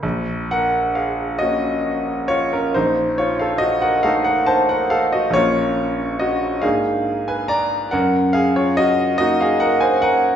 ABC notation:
X:1
M:12/8
L:1/16
Q:3/8=46
K:Bbm
V:1 name="Grand piano"
z2 [Bg]2 [Af]2 [Ge]4 [Fd] [DB] [Ec]2 [Fd] [=Af] [Ge] [Bg] [Af] [Bg] [c=a] [Bg] [Af] [Ge] | [Fd]4 [Ge]2 [Af]3 [_ca] [=db]2 [Bg]2 [Af] [F_d] [Ge]2 [Ge] [Af] [Bg] [=ca] [Bg]2 |]
V:2 name="Grand piano"
B,,,6 [B,D]6 B,,,6 [=A,E]6 | [B,,,B,D]6 [A,,B,=D]6 G,,6 [B,E]6 |]